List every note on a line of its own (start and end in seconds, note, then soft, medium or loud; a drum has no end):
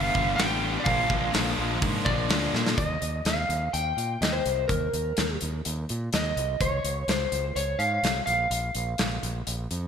0.00 0.15 D3 medium
0.00 0.14 G3 medium
0.00 0.35 G3 medium
0.00 0.13 B3 medium
0.00 0.14 B3 medium
0.00 0.13 D4 medium
0.00 0.14 D4 medium
0.00 0.11 B4 loud
0.00 0.35 F5 loud
0.13 0.34 G1 medium
0.13 0.37 D3 medium
0.13 0.38 G3 medium
0.13 0.37 B3 medium
0.13 0.39 B3 medium
0.13 0.39 D4 medium
0.13 0.37 D4 medium
0.13 0.38 B4 medium
0.13 kick medium
0.17 0.64 G2 medium
0.36 0.76 A1 medium
0.36 0.85 D3 medium
0.36 0.84 G3 medium
0.36 0.63 G3 medium
0.36 0.85 B3 medium
0.36 0.85 D4 medium
0.36 0.85 B4 medium
0.36 0.79 G5 loud
0.36 snare loud
0.36 open hi-hat medium
0.40 0.62 B3 medium
0.40 0.61 D4 medium
0.62 0.86 G3 medium
0.62 0.85 B3 medium
0.62 0.85 D4 medium
0.80 1.33 A#2 medium
0.80 0.87 D5 medium
0.84 1.05 A#1 loud
0.84 1.31 A#2 medium
0.84 1.33 F3 medium
0.84 1.11 F3 medium
0.84 1.09 A#3 medium
0.84 1.08 D4 medium
0.84 1.07 F4 medium
0.84 1.06 A#4 medium
0.84 2.24 F5 medium
0.84 kick loud
0.84 open hi-hat medium
0.88 1.10 G#3 loud
0.88 1.08 D4 loud
1.07 1.29 A#1 medium
1.07 1.32 G#3 medium
1.07 1.30 A#3 medium
1.07 1.31 D4 medium
1.07 1.34 D4 medium
1.07 1.32 F4 medium
1.07 1.33 A#4 medium
1.07 kick medium
1.12 1.32 F3 medium
1.31 1.53 A#1 medium
1.31 1.79 A#2 medium
1.31 1.58 F3 medium
1.31 1.57 G#3 medium
1.31 1.58 A#3 medium
1.31 1.57 D4 medium
1.31 1.56 D4 medium
1.31 1.56 F4 medium
1.31 1.54 A#4 medium
1.31 snare loud
1.31 open hi-hat medium
1.56 1.77 A#1 medium
1.56 1.80 G#3 medium
1.56 1.80 A#3 medium
1.56 1.81 D4 medium
1.56 1.80 D4 medium
1.56 1.81 F4 medium
1.56 1.82 A#4 medium
1.60 1.80 F3 medium
1.79 2.01 G#2 medium
1.79 2.28 A#2 medium
1.79 2.05 A#2 medium
1.79 2.29 F3 medium
1.79 2.04 F3 medium
1.79 2.04 G#3 medium
1.79 2.05 A#3 loud
1.79 2.04 D4 medium
1.79 2.02 D4 medium
1.79 2.03 F4 loud
1.79 2.02 A#4 loud
1.79 kick loud
1.79 open hi-hat medium
2.03 2.25 A#1 medium
2.03 2.27 A#2 medium
2.03 2.29 F3 medium
2.03 2.29 G#3 medium
2.03 2.26 A#3 medium
2.03 2.30 D4 medium
2.03 2.27 D4 medium
2.03 2.29 F4 medium
2.03 2.29 A#4 medium
2.03 2.50 D5 loud
2.03 kick medium
2.28 2.48 D2 medium
2.28 2.75 A#2 medium
2.28 2.53 F3 medium
2.28 2.53 G#3 medium
2.28 2.75 A#3 medium
2.28 2.75 D4 medium
2.28 2.76 F4 medium
2.28 2.77 A#4 medium
2.28 snare loud
2.28 open hi-hat medium
2.32 2.52 D4 medium
2.53 2.72 A#2 medium
2.53 2.77 F3 medium
2.53 2.76 G#3 medium
2.53 2.76 D4 medium
2.53 snare medium
2.67 snare medium
2.77 2.96 D#2 medium
2.77 3.27 D#5 medium
2.77 kick medium
2.77 closed hi-hat medium
3.02 3.20 D#2 medium
3.02 closed hi-hat medium
3.25 3.44 D#2 medium
3.25 3.75 F5 medium
3.25 snare medium
3.25 closed hi-hat medium
3.49 3.68 D#2 medium
3.49 closed hi-hat medium
3.73 3.92 D#2 medium
3.73 4.22 G5 medium
3.73 closed hi-hat medium
3.97 4.15 A#2 medium
3.97 closed hi-hat medium
4.21 4.39 D#2 medium
4.21 4.34 D#5 medium
4.21 snare medium
4.21 closed hi-hat medium
4.33 4.67 C5 medium
4.46 4.64 C2 medium
4.46 closed hi-hat medium
4.68 4.88 D#2 medium
4.68 5.36 A#4 medium
4.68 kick medium
4.68 closed hi-hat medium
4.93 5.12 D#2 medium
4.93 closed hi-hat medium
5.17 5.36 D#2 medium
5.17 snare medium
5.17 closed hi-hat medium
5.41 5.60 D#2 medium
5.41 closed hi-hat medium
5.65 5.84 D#2 medium
5.65 closed hi-hat medium
5.89 6.08 A#2 medium
5.89 closed hi-hat medium
6.13 6.31 D#2 medium
6.13 6.62 D#5 medium
6.13 snare medium
6.13 closed hi-hat medium
6.37 6.55 C2 medium
6.37 closed hi-hat medium
6.61 6.79 C#2 medium
6.61 7.09 C#5 medium
6.61 kick medium
6.61 closed hi-hat medium
6.84 7.03 C#2 medium
6.84 closed hi-hat medium
7.08 7.26 C#2 medium
7.08 7.56 C5 medium
7.08 snare medium
7.08 closed hi-hat medium
7.32 7.50 C#2 medium
7.32 closed hi-hat medium
7.56 7.74 C#2 medium
7.56 7.80 C#5 medium
7.56 closed hi-hat medium
7.79 7.98 G#2 medium
7.79 8.25 F5 loud
7.79 closed hi-hat medium
8.03 8.22 C2 medium
8.03 snare medium
8.03 closed hi-hat medium
8.26 8.46 A#1 medium
8.26 9.18 F5 medium
8.26 closed hi-hat medium
8.50 8.69 A#1 medium
8.50 closed hi-hat medium
8.75 8.94 A#1 medium
8.75 closed hi-hat medium
8.98 9.18 A#1 medium
8.98 snare medium
8.98 closed hi-hat medium
9.23 9.42 A#1 medium
9.23 closed hi-hat medium
9.47 9.65 A#1 medium
9.47 closed hi-hat medium
9.71 9.88 F2 medium
9.71 closed hi-hat medium